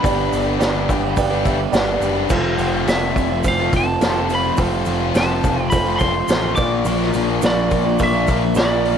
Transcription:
Already playing: lead electric guitar B5
0.02 picked electric bass G1, distorted electric guitar G2 D3 G3 B3 D4 G4, grand piano G4 B4 D5, kick, open hi-hat, shaker
0.32 picked electric bass G1, distorted electric guitar G3 B3 D4 G4, open hi-hat, shaker
0.44 distorted electric guitar G3 B3 D4 G4
0.59 picked electric bass G1, distorted electric guitar G2 D3 G3 B3 D4 G4, grand piano G4 B4 D5, snare, open hi-hat, shaker
0.74 distorted electric guitar G3 B3 D4 G4
0.88 picked electric bass G1, distorted electric guitar G3 B3 D4 G4, muted distorted electric guitar stroke, kick, open hi-hat, shaker
1.03 distorted electric guitar G3 B3 D4 G4, muted distorted electric guitar stroke
1.16 picked electric bass G1, grand piano G4 B4 D5, kick, open hi-hat, shaker
1.30 distorted electric guitar G3 B3 D4 G4
1.45 distorted electric guitar G3 B3 D4 G4, grand piano E5, kick, open hi-hat, shaker
1.60 muted distorted electric guitar stroke
1.72 picked electric bass G1, distorted electric guitar G2 D3 G3, grand piano G4 B4 D5 F#5, snare, open hi-hat, shaker
1.76 distorted electric guitar B3 D4 G4
1.88 distorted electric guitar G3 B3 D4 G4
2.00 picked electric bass F#1, distorted electric guitar G3 B3 D4 G4, grand piano G5, open hi-hat, shaker
2.16 distorted electric guitar G3 B3 D4 G4
2.29 picked electric bass F1, distorted electric guitar F2 C3 F3 A3 C4 F4, grand piano F4 A4 C5, kick, crash, shaker
2.57 picked electric bass F1, distorted electric guitar F3 A3 C4 F4, open hi-hat, shaker
2.72 distorted electric guitar F3 A3 C4 F4
2.85 picked electric bass F1, distorted electric guitar F2 C3 F3 A3 C4 F4, grand piano F4 A4 D5, lead electric guitar E5, snare, open hi-hat, shaker
3.01 distorted electric guitar F3 A3 C4 F4
3.15 picked electric bass F1, distorted electric guitar F3 A3 C4 F4, muted distorted electric guitar stroke, kick, open hi-hat, shaker
3.30 distorted electric guitar F3 A3 C4 F4, muted distorted electric guitar stroke
3.44 picked electric bass F1, grand piano F4 A4 C5, kick, open hi-hat, shaker
3.48 lead electric guitar F5
3.60 distorted electric guitar F3 A3 C4 F4
3.73 picked electric bass F1, distorted electric guitar F3 A3 C4, lead electric guitar A5, kick, open hi-hat, shaker
3.78 distorted electric guitar F4
3.86 muted distorted electric guitar stroke
4.01 picked electric bass F1, distorted electric guitar F2 C3 F3 A3, grand piano F4 A4 C5, snare, open hi-hat, shaker
4.05 distorted electric guitar C4 F4
4.17 distorted electric guitar F3 A3 C4 F4
4.29 distorted electric guitar F3 A3 C4 F4, open hi-hat, shaker
4.35 lead electric guitar B5
4.43 distorted electric guitar F3 A3 C4 F4
4.57 picked electric bass F1, distorted electric guitar F2 C3 F3 A3 C4 F4, grand piano F4 A4 C5, kick, open hi-hat, shaker
4.85 picked electric bass F1, distorted electric guitar F3 A3 C4, open hi-hat, shaker
4.90 distorted electric guitar F4
5.00 distorted electric guitar F3 A3 C4 F4
5.15 picked electric bass F1, distorted electric guitar F2 C3 F3 A3 C4, grand piano F4 A4 C5, lead electric guitar A5, snare, open hi-hat, shaker
5.19 distorted electric guitar F4
5.29 distorted electric guitar F3 A3 C4 F4
5.43 picked electric bass F1, distorted electric guitar F3 A3 C4 F4, muted distorted electric guitar stroke, kick, open hi-hat, shaker
5.57 distorted electric guitar F3 A3 C4 F4, muted distorted electric guitar stroke
5.62 lead electric guitar G5
5.70 picked electric bass F1, grand piano F4 A4, lead electric guitar B5, kick, open hi-hat, shaker
5.74 grand piano C5
5.85 distorted electric guitar F3 A3 C4 F4
5.96 distorted electric guitar F3, lead electric guitar B5 C6, shaker
6.01 distorted electric guitar A3 C4 F4, kick, open hi-hat
6.15 muted distorted electric guitar stroke
6.28 picked electric bass A1, distorted electric guitar F2 C3 F3 A3 C4 F4, grand piano F4 A4 C5, snare, open hi-hat, shaker
6.41 distorted electric guitar F3 A3 C4 F4
6.56 picked electric bass A#1, distorted electric guitar A#2 F3 A#3 D4 F4 A#4, grand piano F4 A#4 D5, lead electric guitar D6, kick, open hi-hat, shaker
6.70 distorted electric guitar A#3 D4 F4 A#4
6.85 picked electric bass A#1, distorted electric guitar A#2 F3 A#3 D4 F4 A#4, open hi-hat, shaker
7.02 snare
7.13 picked electric bass A#1, distorted electric guitar A#3 D4 F4 A#4, open hi-hat, shaker
7.28 distorted electric guitar A#3 D4 F4 A#4
7.42 picked electric bass A#1, distorted electric guitar A#2 F3 A#3 D4 F4 A#4, grand piano F4 A#4 D5, snare, open hi-hat, shaker
7.46 lead electric guitar D5
7.55 distorted electric guitar A#3 D4 F4 A#4
7.70 picked electric bass A#1, distorted electric guitar A#3 D4 F4 A#4, muted distorted electric guitar stroke, kick, open hi-hat, shaker
7.85 distorted electric guitar A#3 D4 F4 A#4, muted distorted electric guitar stroke
7.99 picked electric bass A#1, grand piano F4 A#4 D5, kick, open hi-hat, shaker
8.03 lead electric guitar E5
8.13 distorted electric guitar A#3 D4 F4 A#4
8.27 picked electric bass A#1, distorted electric guitar A#3 D4 F4, kick, open hi-hat, shaker
8.31 distorted electric guitar A#4
8.44 muted distorted electric guitar stroke
8.55 picked electric bass A#1, distorted electric guitar A#2 F3 A#3 D4, grand piano F4 A#4 D5, lead electric guitar D5, snare, open hi-hat, shaker
8.59 distorted electric guitar F4 A#4
8.70 distorted electric guitar A#3 D4 F4 A#4
8.85 distorted electric guitar A#3 D4 F4 A#4, open hi-hat

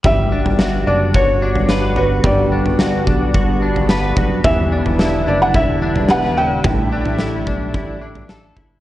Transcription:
0.04 analog synth bass G1, analog synth pad D3 G3 B3 F#4, clean electric guitar G3, felt piano E5, kick, floor tom
0.32 clean electric guitar D4
0.46 analog synth bass G1, floor tom
0.59 clean electric guitar F#4, snare
0.87 analog synth bass F#1, clean electric guitar D4, felt piano D5
1.14 analog synth bass G1, clean electric guitar F#4, felt piano C#5, kick, floor tom
1.42 clean electric guitar D4
1.55 floor tom
1.69 clean electric guitar B4, snare
1.96 clean electric guitar F#4, felt piano B4, floor tom
2.24 analog synth bass G1, clean electric guitar G3, felt piano D5, kick, floor tom
2.52 clean electric guitar D4
2.66 analog synth bass G1, floor tom
2.79 clean electric guitar F#4, snare
3.07 analog synth bass B1, clean electric guitar D4, kick
3.34 analog synth bass G1, clean electric guitar F#4, kick, floor tom
3.62 clean electric guitar D4
3.76 floor tom
3.89 clean electric guitar B4, snare
4.17 analog synth bass F#1, clean electric guitar F#4, kick, floor tom
4.44 analog synth bass E1, analog synth pad D3 E4, clean electric guitar E3, felt piano E5, kick, floor tom
4.72 clean electric guitar D4
4.86 analog synth bass E1, floor tom
4.99 clean electric guitar E4, snare
5.27 analog synth bass F#1, clean electric guitar D4, felt piano D5
5.42 felt piano F#5
5.54 analog synth bass E1, clean electric guitar E4, felt piano E5, kick, floor tom
5.82 clean electric guitar D4
5.96 floor tom
6.09 clean electric guitar B4, felt piano F#5, snare
6.37 clean electric guitar E4, felt piano G5
6.64 analog synth bass A1, clean electric guitar A2, analog synth pad G3 A3 E4, kick, floor tom
6.92 clean electric guitar D4
7.05 analog synth bass A1, floor tom
7.19 clean electric guitar E4, snare
7.47 analog synth bass B1, clean electric guitar D4, kick
7.74 analog synth bass A1, clean electric guitar E4, kick, floor tom
8.01 clean electric guitar D4
8.15 floor tom
8.29 clean electric guitar A4, snare
8.56 analog synth bass G1, clean electric guitar E4, kick, floor tom

